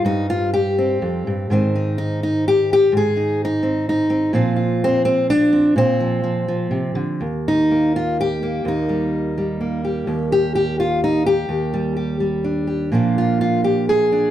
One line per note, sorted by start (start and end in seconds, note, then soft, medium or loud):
0.00 1.50 G3 medium
0.00 0.78 C4 medium
0.05 1.01 G2 medium
0.05 0.29 D#4 medium
0.30 0.53 F4 loud
0.54 1.50 G4 loud
0.78 1.52 C4 medium
1.02 1.26 F2 medium
1.27 1.50 G2 medium
1.50 2.90 G#2 medium
1.50 4.33 D#3 soft
1.50 3.62 C4 medium
1.50 1.75 D#4 medium
1.75 1.97 D#4 soft
1.98 2.21 D#4 medium
2.23 2.46 D#4 medium
2.48 2.70 G4 loud
2.73 2.94 G4 loud
2.92 4.31 G#2 medium
2.97 3.42 G#4 loud
3.17 3.44 D#4 soft
3.45 3.88 D#4 loud
3.63 4.09 C4 soft
3.89 4.35 D#4 medium
4.10 4.34 C4 medium
4.33 5.75 A#2 medium
4.33 5.73 F3 medium
4.33 4.83 C4 medium
4.33 4.56 F4 medium
4.56 5.72 F4 medium
4.84 5.04 C4 loud
5.05 5.29 C4 loud
5.30 5.77 D4 loud
5.53 5.73 C4 medium
5.76 6.70 A#2 medium
5.76 7.22 C4 medium
6.00 6.22 F3 soft
6.24 6.47 F3 medium
6.48 7.18 F3 medium
6.71 6.95 C3 medium
6.95 7.20 D3 medium
7.21 8.65 D#2 medium
7.48 7.95 D#4 medium
7.71 8.42 A#3 soft
7.96 8.19 F4 medium
8.21 8.67 G4 loud
8.43 9.60 A#3 soft
8.65 10.07 D#2 medium
8.65 9.84 D#4 medium
8.89 9.37 G3 soft
9.38 11.50 G3 soft
9.61 12.44 A#3 soft
9.84 10.32 G4 soft
10.07 11.47 D#2 medium
10.32 10.54 G4 loud
10.55 10.78 G4 medium
10.80 11.02 F4 medium
11.04 11.26 D#4 medium
11.26 11.95 G4 medium
11.49 12.93 D#2 medium
11.74 12.19 G3 soft
11.96 12.66 G4 soft
12.20 12.93 G3 soft
12.44 12.94 D4 soft
12.67 12.89 G4 soft
12.92 14.31 A#2 medium
12.92 14.31 F3 soft
12.92 14.31 A#3 soft
12.92 14.11 D4 soft
12.92 13.18 F4 soft
13.18 13.40 F4 medium
13.41 13.64 F4 medium
13.64 13.89 G4 medium
13.89 14.31 G#4 loud
14.12 14.31 D4 soft